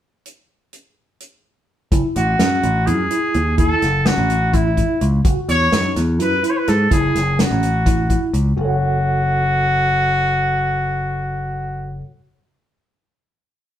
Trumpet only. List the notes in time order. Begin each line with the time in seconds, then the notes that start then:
2.16 F#4
2.86 G#4
3.58 A4
4.06 F#4
4.54 E4
5.49 C#5
6.21 B4
6.46 B4 C#5
6.57 B4
6.68 A4
6.93 G#4
7.41 F#4
8.57 F#4